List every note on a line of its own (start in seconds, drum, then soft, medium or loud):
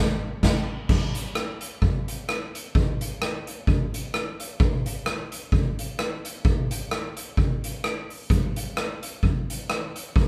0.43 kick loud
0.43 snare loud
0.43 crash medium
0.89 kick loud
0.89 crash loud
1.15 closed hi-hat loud
1.35 cross-stick loud
1.61 closed hi-hat medium
1.82 kick loud
2.08 closed hi-hat loud
2.29 cross-stick loud
2.55 closed hi-hat loud
2.75 kick loud
3.01 closed hi-hat loud
3.22 cross-stick loud
3.47 closed hi-hat medium
3.67 kick loud
3.94 closed hi-hat loud
4.14 cross-stick loud
4.40 closed hi-hat loud
4.60 kick loud
4.86 closed hi-hat loud
5.06 cross-stick loud
5.32 closed hi-hat medium
5.52 kick loud
5.79 closed hi-hat loud
5.99 cross-stick loud
6.25 closed hi-hat loud
6.45 kick loud
6.71 closed hi-hat loud
6.91 cross-stick loud
7.17 closed hi-hat medium
7.37 kick loud
7.64 closed hi-hat loud
7.84 cross-stick loud
8.10 open hi-hat medium
8.30 kick loud
8.30 hi-hat pedal medium
8.56 closed hi-hat loud
8.77 cross-stick loud
9.03 closed hi-hat loud
9.23 kick loud
9.50 closed hi-hat loud
9.70 cross-stick loud
9.96 closed hi-hat medium
10.16 kick loud